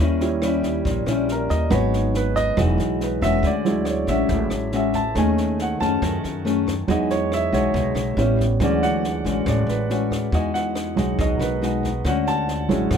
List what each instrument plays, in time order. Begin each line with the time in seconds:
0.00 upright bass D#2, nylon-string guitar D#3 G3 C#4 E4
0.20 grand piano G3 C#4 E4, snare
0.42 nylon-string guitar G3 C#4 E4, cross-stick, snare
0.63 kick, snare
0.85 upright bass A#1, nylon-string guitar A#2, kick, snare
1.06 upright bass A#1, nylon-string guitar G3 C#4 E4, cross-stick, snare
1.28 grand piano A#4, snare
1.49 upright bass D#2, grand piano D#5, kick, snare
1.70 upright bass G#1, grand piano F#3 B3 D#4 C#5, nylon-string guitar G#3 D#4 F#4 B4, kick, cross-stick, snare
1.93 snare
2.14 grand piano B4, snare
2.35 grand piano D#5, kick, snare
2.57 upright bass E1, nylon-string guitar E3 G#3 D#4 F#4, grand piano F#3 G#3 D#4, kick, cross-stick, snare
2.78 upright bass B1, snare
3.00 grand piano B4, snare
3.22 upright bass E1, nylon-string guitar G#3 C#4 F#4, grand piano E5, kick, cross-stick, snare
3.43 upright bass D2, nylon-string guitar D3, grand piano D5, kick, snare
3.65 grand piano F#3 G#3 C#4 E4, snare
3.85 cross-stick, snare
3.89 grand piano C#5
4.07 upright bass A1, nylon-string guitar G#3 C#4 F#4, grand piano E5, kick, snare
4.28 upright bass A1, nylon-string guitar A2, kick, snare
4.50 upright bass A1, cross-stick, snare
4.72 nylon-string guitar G#3 C#4 F#4, snare
4.76 grand piano E5
4.93 grand piano A5, kick, snare
5.15 upright bass D#2, nylon-string guitar D#3 A3 C#4 G#4, grand piano A3 C#4 D#4 G#5, kick, cross-stick, snare
5.37 snare
5.59 grand piano F#5, snare
5.80 upright bass F#2, nylon-string guitar A3 C#4 G#4, grand piano A5, kick, snare
6.02 upright bass F#2, nylon-string guitar D#3, kick, cross-stick, snare
6.24 upright bass F#2, snare
6.45 nylon-string guitar A3 C#4 G#4, snare
6.67 kick, cross-stick, snare
6.88 upright bass E2, nylon-string guitar E3 G#3 D#4 F#4, grand piano F#3 G#3 D#4 D#5, kick, snare
7.10 grand piano C#5, snare
7.32 grand piano E5, cross-stick, snare
7.52 upright bass B1, nylon-string guitar G#3 D#4 F#4, grand piano C#5, kick, snare
7.74 upright bass B1, nylon-string guitar B2, kick, snare
7.95 upright bass B1, cross-stick, snare
8.17 upright bass A1, nylon-string guitar G3 C#4 E4, grand piano G3 B3 C#4, snare
8.39 kick, snare
8.60 upright bass D2, nylon-string guitar D3 G#3 C#4 F#4, grand piano E3 F#3 G#3 C#4, kick, cross-stick, snare
8.64 grand piano D5
8.82 grand piano F#5, snare
9.04 snare
9.25 upright bass A1, nylon-string guitar G#3 C#4 F#4, kick, snare
9.46 upright bass A1, nylon-string guitar A2, grand piano D5, kick, cross-stick, snare
9.67 upright bass A1, grand piano B4, snare
9.90 nylon-string guitar G#3 C#4 F#4, snare
10.11 kick, cross-stick, snare
10.32 upright bass E2, nylon-string guitar E3 G#3 D#4 F#4, grand piano D#5, kick, snare
10.54 grand piano F#5, snare
10.75 cross-stick, snare
10.96 upright bass B1, grand piano F#3 G#3 D#4, nylon-string guitar G#3 D#4 F#4, kick, snare
11.19 upright bass B1, nylon-string guitar B2, grand piano D#5, kick, snare
11.36 upright bass B1, grand piano A#4
11.40 grand piano B4, cross-stick, snare
11.62 nylon-string guitar G#3 D#4 F#4, snare
11.83 kick, snare
12.05 upright bass D2, nylon-string guitar D3 G#3 C#4 F#4, grand piano F#5, kick, cross-stick, snare
12.26 grand piano A5, snare
12.48 snare
12.69 upright bass A1, grand piano F#3 G#3 C#4 E4, nylon-string guitar G#3 C#4 F#4, kick, snare
12.91 upright bass A1, nylon-string guitar A2, grand piano F#5, kick, cross-stick, snare